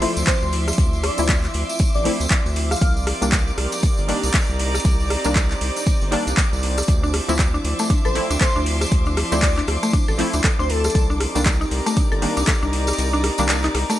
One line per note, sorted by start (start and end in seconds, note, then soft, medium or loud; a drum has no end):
0.00 2.77 F3 medium
0.00 4.04 F3 medium
0.00 0.19 F3 medium
0.00 0.19 A3 medium
0.00 10.91 C4 medium
0.00 0.20 C4 medium
0.00 2.77 E4 medium
0.00 0.20 E4 medium
0.00 0.76 D5 medium
0.00 2.82 E5 medium
0.00 4.27 C6 medium
0.00 13.99 D6 medium
0.00 closed hi-hat medium
0.00 open hi-hat loud
0.00 downlifter medium
0.17 0.23 D2 medium
0.17 closed hi-hat medium
0.17 tambourine medium
0.27 0.46 C5 loud
0.27 kick loud
0.27 snare loud
0.27 clap loud
0.27 closed hi-hat medium
0.27 tambourine medium
0.42 0.72 D2 loud
0.42 tambourine soft
0.53 closed hi-hat medium
0.53 open hi-hat medium
0.68 cross-stick medium
0.68 closed hi-hat medium
0.68 tambourine medium
0.73 closed hi-hat medium
0.78 1.10 D2 loud
0.78 2.79 E5 medium
0.78 kick loud
0.78 closed hi-hat medium
0.78 tambourine medium
0.93 tambourine soft
1.03 1.23 D5 loud
1.03 cross-stick medium
1.03 closed hi-hat medium
1.03 open hi-hat loud
1.18 1.48 D2 loud
1.18 1.33 F3 medium
1.18 1.33 A3 medium
1.18 1.33 C4 medium
1.18 1.33 E4 medium
1.18 closed hi-hat medium
1.18 closed hi-hat soft
1.18 tambourine medium
1.29 kick loud
1.29 snare loud
1.29 clap loud
1.29 closed hi-hat medium
1.29 tambourine medium
1.44 clap soft
1.44 tambourine soft
1.54 1.64 D2 medium
1.54 closed hi-hat medium
1.54 open hi-hat medium
1.69 closed hi-hat medium
1.69 tambourine medium
1.79 kick loud
1.79 closed hi-hat medium
1.79 tambourine medium
1.94 2.09 A1 medium
1.94 2.11 D5 medium
1.94 snare soft
1.94 tambourine soft
2.04 2.80 F3 loud
2.04 2.80 A3 medium
2.04 2.80 C4 medium
2.04 2.81 E4 loud
2.04 closed hi-hat medium
2.04 open hi-hat loud
2.20 2.27 D2 medium
2.20 closed hi-hat medium
2.20 tambourine medium
2.30 kick loud
2.30 snare loud
2.30 clap loud
2.30 closed hi-hat medium
2.30 tambourine medium
2.46 2.75 D2 loud
2.46 tambourine soft
2.56 snare soft
2.56 closed hi-hat medium
2.56 open hi-hat loud
2.71 2.78 F5 medium
2.71 cross-stick medium
2.71 closed hi-hat medium
2.71 tambourine medium
2.76 closed hi-hat medium
2.81 3.13 C2 loud
2.81 6.88 D#4 medium
2.81 6.84 G4 medium
2.81 4.83 A#4 medium
2.81 13.99 D5 medium
2.81 2.91 F5 medium
2.81 kick loud
2.81 closed hi-hat medium
2.81 tambourine medium
2.90 8.53 D5 loud
2.97 tambourine soft
3.07 cross-stick medium
3.07 closed hi-hat medium
3.07 open hi-hat loud
3.21 3.52 C2 loud
3.21 3.36 D#3 medium
3.21 3.36 G3 medium
3.21 3.36 A#3 medium
3.21 3.36 D4 medium
3.21 closed hi-hat medium
3.21 tambourine medium
3.32 kick loud
3.32 snare loud
3.32 clap loud
3.32 closed hi-hat medium
3.32 tambourine medium
3.47 tambourine soft
3.57 3.67 C2 medium
3.57 6.88 A#5 medium
3.57 cross-stick medium
3.57 closed hi-hat medium
3.57 open hi-hat loud
3.72 snare medium
3.72 closed hi-hat medium
3.72 tambourine medium
3.83 kick loud
3.83 closed hi-hat loud
3.83 closed hi-hat medium
3.83 tambourine medium
3.97 4.13 G1 medium
3.97 closed hi-hat soft
3.97 tambourine soft
4.08 4.26 D#3 medium
4.08 4.26 G3 medium
4.08 4.26 A#3 medium
4.08 4.27 D4 loud
4.08 closed hi-hat medium
4.08 open hi-hat loud
4.23 4.30 C2 medium
4.23 closed hi-hat medium
4.23 tambourine medium
4.33 kick loud
4.33 snare loud
4.33 clap loud
4.33 closed hi-hat loud
4.33 closed hi-hat medium
4.33 tambourine medium
4.49 4.79 C2 loud
4.49 tambourine soft
4.59 closed hi-hat medium
4.59 open hi-hat loud
4.74 cross-stick medium
4.74 closed hi-hat soft
4.74 tambourine medium
4.80 closed hi-hat medium
4.85 5.17 C2 loud
4.85 6.86 C5 medium
4.85 kick loud
4.85 closed hi-hat medium
4.85 tambourine medium
5.00 tambourine soft
5.10 cross-stick medium
5.10 closed hi-hat medium
5.10 open hi-hat loud
5.24 5.55 C2 loud
5.24 5.39 D#3 medium
5.24 5.39 G3 medium
5.24 5.40 A#3 medium
5.24 5.40 D4 medium
5.24 closed hi-hat soft
5.24 tambourine medium
5.35 kick loud
5.35 snare loud
5.35 clap loud
5.35 closed hi-hat medium
5.35 tambourine medium
5.51 clap soft
5.51 tambourine soft
5.61 5.71 C2 medium
5.61 closed hi-hat medium
5.61 open hi-hat medium
5.76 closed hi-hat medium
5.76 tambourine medium
5.87 kick loud
5.87 closed hi-hat medium
5.87 tambourine medium
6.01 6.16 G1 medium
6.01 snare soft
6.01 tambourine soft
6.11 6.87 D#3 loud
6.11 6.87 G3 medium
6.11 6.87 A#3 medium
6.11 6.88 D4 loud
6.11 closed hi-hat medium
6.11 open hi-hat loud
6.27 6.34 C2 medium
6.27 closed hi-hat medium
6.27 tambourine medium
6.37 kick loud
6.37 snare loud
6.37 clap loud
6.37 closed hi-hat loud
6.37 closed hi-hat medium
6.37 tambourine medium
6.52 6.82 C2 loud
6.52 tambourine soft
6.63 snare soft
6.63 closed hi-hat medium
6.63 open hi-hat loud
6.78 cross-stick medium
6.78 closed hi-hat soft
6.78 tambourine medium
6.83 closed hi-hat medium
6.88 7.20 D2 loud
6.88 12.22 F3 medium
6.88 10.91 F3 medium
6.88 10.91 E4 medium
6.88 kick loud
6.88 closed hi-hat loud
6.88 closed hi-hat medium
6.88 tambourine medium
7.03 7.09 D4 loud
7.03 tambourine soft
7.07 10.95 E5 medium
7.13 cross-stick medium
7.13 closed hi-hat medium
7.13 open hi-hat loud
7.28 7.59 D2 loud
7.28 7.43 F3 medium
7.28 7.43 A3 medium
7.28 7.43 C4 medium
7.28 7.43 E4 medium
7.28 closed hi-hat medium
7.28 tambourine medium
7.39 7.44 D5 medium
7.39 kick loud
7.39 snare loud
7.39 clap loud
7.39 closed hi-hat medium
7.39 tambourine medium
7.54 7.58 D4 loud
7.54 tambourine soft
7.64 7.74 D2 medium
7.64 11.78 C6 medium
7.64 closed hi-hat medium
7.64 open hi-hat loud
7.79 7.86 A3 loud
7.79 snare medium
7.79 closed hi-hat medium
7.79 tambourine medium
7.90 7.99 D4 medium
7.90 kick loud
7.90 closed hi-hat medium
7.90 tambourine medium
8.05 8.20 A1 medium
8.05 8.11 A4 loud
8.05 8.21 C5 loud
8.05 closed hi-hat soft
8.05 tambourine soft
8.15 8.33 F3 medium
8.15 8.33 A3 medium
8.15 8.33 C4 medium
8.15 8.33 E4 loud
8.15 closed hi-hat medium
8.15 open hi-hat loud
8.30 8.37 D2 medium
8.30 8.40 D4 medium
8.30 closed hi-hat medium
8.30 tambourine medium
8.40 8.46 A4 loud
8.40 8.60 C5 loud
8.40 kick loud
8.40 snare loud
8.40 clap loud
8.40 closed hi-hat loud
8.40 closed hi-hat medium
8.40 tambourine medium
8.56 8.86 D2 loud
8.56 8.62 D4 loud
8.56 tambourine soft
8.66 closed hi-hat medium
8.66 open hi-hat loud
8.81 cross-stick medium
8.81 closed hi-hat soft
8.81 tambourine medium
8.86 closed hi-hat medium
8.92 9.23 D2 loud
8.92 kick loud
8.92 closed hi-hat medium
8.92 tambourine medium
9.06 9.13 D4 loud
9.06 tambourine soft
9.17 cross-stick medium
9.17 closed hi-hat medium
9.17 open hi-hat loud
9.32 9.62 D2 loud
9.32 9.46 F3 medium
9.32 9.46 A3 medium
9.32 9.46 C4 medium
9.32 9.47 E4 medium
9.32 9.39 D5 medium
9.32 closed hi-hat medium
9.32 closed hi-hat soft
9.32 tambourine medium
9.42 9.52 D5 medium
9.42 9.48 D5 medium
9.42 kick loud
9.42 snare loud
9.42 clap loud
9.42 closed hi-hat medium
9.57 9.61 D4 loud
9.57 clap soft
9.57 tambourine soft
9.67 9.78 D2 medium
9.67 cross-stick medium
9.67 closed hi-hat medium
9.67 open hi-hat medium
9.83 9.89 A3 loud
9.83 closed hi-hat medium
9.83 tambourine medium
9.93 10.02 D4 medium
9.93 kick loud
9.93 closed hi-hat medium
9.93 tambourine medium
10.08 10.23 A1 loud
10.08 10.14 A4 loud
10.08 snare soft
10.08 tambourine soft
10.18 10.93 F3 loud
10.18 10.94 A3 medium
10.18 10.94 C4 medium
10.18 10.94 E4 loud
10.18 closed hi-hat medium
10.18 open hi-hat loud
10.33 10.40 D2 medium
10.33 10.43 D4 medium
10.33 closed hi-hat medium
10.33 tambourine medium
10.44 10.50 A4 loud
10.44 kick loud
10.44 snare loud
10.44 clap loud
10.44 closed hi-hat medium
10.44 tambourine medium
10.59 10.89 D2 loud
10.59 10.65 D4 loud
10.59 10.68 C5 medium
10.59 tambourine soft
10.69 11.01 A4 loud
10.69 snare soft
10.69 closed hi-hat medium
10.69 open hi-hat medium
10.84 cross-stick medium
10.84 closed hi-hat medium
10.84 tambourine medium
10.90 closed hi-hat medium
10.95 11.27 C2 loud
10.95 13.99 C4 medium
10.95 13.99 D#4 loud
10.95 13.99 G4 medium
10.95 13.99 A#4 medium
10.95 kick loud
10.95 closed hi-hat medium
10.95 tambourine medium
11.10 11.16 D4 loud
11.10 tambourine soft
11.19 13.99 D5 medium
11.19 cross-stick medium
11.19 closed hi-hat medium
11.19 open hi-hat loud
11.35 11.65 C2 loud
11.35 11.49 D#3 medium
11.35 11.50 G3 medium
11.35 11.50 A#3 medium
11.35 11.50 D4 medium
11.35 closed hi-hat medium
11.35 tambourine medium
11.45 11.51 D5 medium
11.45 kick loud
11.45 snare loud
11.45 clap loud
11.45 closed hi-hat medium
11.45 tambourine medium
11.59 11.65 D#4 loud
11.59 13.99 A#5 medium
11.59 tambourine soft
11.71 11.81 C2 medium
11.71 closed hi-hat medium
11.71 open hi-hat medium
11.86 11.92 A3 loud
11.86 snare medium
11.86 closed hi-hat medium
11.86 tambourine medium
11.97 12.06 D4 medium
11.97 kick loud
11.97 closed hi-hat medium
11.97 tambourine medium
12.12 12.26 G1 medium
12.12 12.18 A4 loud
12.12 closed hi-hat soft
12.12 tambourine soft
12.22 12.40 D#3 medium
12.22 12.40 G3 medium
12.22 12.40 A#3 medium
12.22 12.40 D4 medium
12.22 closed hi-hat medium
12.22 open hi-hat loud
12.37 12.44 C2 medium
12.37 12.46 D4 medium
12.37 closed hi-hat medium
12.37 tambourine medium
12.47 12.53 A4 loud
12.47 kick loud
12.47 snare loud
12.47 clap loud
12.47 closed hi-hat medium
12.47 tambourine medium
12.62 12.92 C2 loud
12.62 12.69 D4 loud
12.62 tambourine soft
12.73 closed hi-hat medium
12.73 open hi-hat medium
12.87 cross-stick medium
12.87 closed hi-hat medium
12.87 tambourine medium
12.93 closed hi-hat medium
12.98 13.30 C2 loud
12.98 closed hi-hat medium
12.98 tambourine medium
13.13 13.20 D4 loud
13.13 tambourine soft
13.24 cross-stick medium
13.24 closed hi-hat medium
13.24 open hi-hat loud
13.38 13.69 C2 loud
13.38 13.53 D#3 medium
13.38 13.53 G3 medium
13.38 13.53 A#3 medium
13.38 13.53 D4 medium
13.38 closed hi-hat soft
13.38 closed hi-hat medium
13.38 tambourine medium
13.49 13.55 D5 medium
13.49 snare loud
13.49 clap loud
13.49 closed hi-hat medium
13.49 tambourine medium
13.63 13.68 D#4 loud
13.63 clap soft
13.63 tambourine soft
13.74 13.84 C2 medium
13.74 cross-stick medium
13.74 snare loud
13.74 closed hi-hat medium
13.74 open hi-hat medium
13.89 13.96 A3 loud
13.89 snare loud
13.89 closed hi-hat medium
13.89 tambourine medium